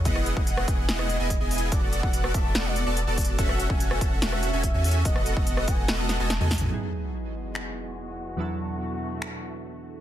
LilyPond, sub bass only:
\new Staff \with { instrumentName = "Sub bass" } { \clef bass \time 4/4 \key e \major \tempo 4 = 144 e,,8. e,,8. e,,8 e,,8. e,,8 e,,8. | e,,8. e,,8. e,,8 e,,8. e,,8 e,,8. | e,,8. e,,8. e,,8 e,,8. e,,8 e,8. | e,,8. e,,8. e,,8 e,,8. e,,8 e,8. |
r1 | r1 | }